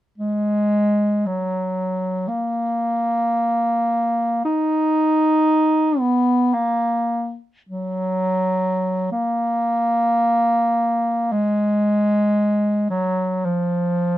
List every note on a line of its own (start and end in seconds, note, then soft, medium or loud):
0.18 1.28 G#3 medium
1.26 2.29 F#3 soft
2.28 4.44 A#3 medium
4.45 6.00 D#4 medium
5.99 6.55 B3 medium
6.54 7.37 A#3 medium
7.69 9.09 F#3 medium
9.12 11.33 A#3 medium
11.32 12.89 G#3 medium
12.90 13.46 F#3 soft
13.44 14.18 F3 medium